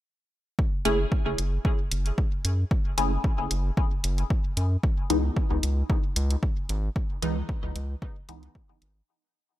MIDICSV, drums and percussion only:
0, 0, Header, 1, 2, 480
1, 0, Start_track
1, 0, Tempo, 530973
1, 532, Time_signature, 4, 2, 24, 8
1, 8676, End_track
2, 0, Start_track
2, 0, Title_t, "Drums"
2, 530, Note_on_c, 9, 36, 110
2, 621, Note_off_c, 9, 36, 0
2, 771, Note_on_c, 9, 42, 76
2, 861, Note_off_c, 9, 42, 0
2, 1010, Note_on_c, 9, 36, 98
2, 1101, Note_off_c, 9, 36, 0
2, 1251, Note_on_c, 9, 42, 65
2, 1342, Note_off_c, 9, 42, 0
2, 1490, Note_on_c, 9, 36, 113
2, 1581, Note_off_c, 9, 36, 0
2, 1731, Note_on_c, 9, 42, 77
2, 1822, Note_off_c, 9, 42, 0
2, 1859, Note_on_c, 9, 42, 30
2, 1950, Note_off_c, 9, 42, 0
2, 1970, Note_on_c, 9, 36, 95
2, 2061, Note_off_c, 9, 36, 0
2, 2212, Note_on_c, 9, 42, 68
2, 2302, Note_off_c, 9, 42, 0
2, 2450, Note_on_c, 9, 36, 119
2, 2541, Note_off_c, 9, 36, 0
2, 2691, Note_on_c, 9, 42, 80
2, 2782, Note_off_c, 9, 42, 0
2, 2930, Note_on_c, 9, 36, 101
2, 3021, Note_off_c, 9, 36, 0
2, 3171, Note_on_c, 9, 42, 68
2, 3262, Note_off_c, 9, 42, 0
2, 3411, Note_on_c, 9, 36, 117
2, 3501, Note_off_c, 9, 36, 0
2, 3651, Note_on_c, 9, 42, 82
2, 3741, Note_off_c, 9, 42, 0
2, 3779, Note_on_c, 9, 42, 32
2, 3870, Note_off_c, 9, 42, 0
2, 3890, Note_on_c, 9, 36, 103
2, 3981, Note_off_c, 9, 36, 0
2, 4131, Note_on_c, 9, 42, 71
2, 4222, Note_off_c, 9, 42, 0
2, 4370, Note_on_c, 9, 36, 123
2, 4461, Note_off_c, 9, 36, 0
2, 4611, Note_on_c, 9, 42, 83
2, 4701, Note_off_c, 9, 42, 0
2, 4850, Note_on_c, 9, 36, 106
2, 4941, Note_off_c, 9, 36, 0
2, 5091, Note_on_c, 9, 42, 73
2, 5182, Note_off_c, 9, 42, 0
2, 5330, Note_on_c, 9, 36, 125
2, 5421, Note_off_c, 9, 36, 0
2, 5571, Note_on_c, 9, 42, 83
2, 5661, Note_off_c, 9, 42, 0
2, 5700, Note_on_c, 9, 42, 33
2, 5790, Note_off_c, 9, 42, 0
2, 5810, Note_on_c, 9, 36, 103
2, 5901, Note_off_c, 9, 36, 0
2, 6051, Note_on_c, 9, 42, 73
2, 6142, Note_off_c, 9, 42, 0
2, 6290, Note_on_c, 9, 36, 117
2, 6381, Note_off_c, 9, 36, 0
2, 6531, Note_on_c, 9, 42, 84
2, 6622, Note_off_c, 9, 42, 0
2, 6770, Note_on_c, 9, 36, 107
2, 6861, Note_off_c, 9, 36, 0
2, 7011, Note_on_c, 9, 42, 71
2, 7102, Note_off_c, 9, 42, 0
2, 7250, Note_on_c, 9, 36, 121
2, 7341, Note_off_c, 9, 36, 0
2, 7491, Note_on_c, 9, 42, 84
2, 7582, Note_off_c, 9, 42, 0
2, 7620, Note_on_c, 9, 42, 33
2, 7710, Note_off_c, 9, 42, 0
2, 7730, Note_on_c, 9, 36, 105
2, 7821, Note_off_c, 9, 36, 0
2, 7972, Note_on_c, 9, 42, 74
2, 8062, Note_off_c, 9, 42, 0
2, 8676, End_track
0, 0, End_of_file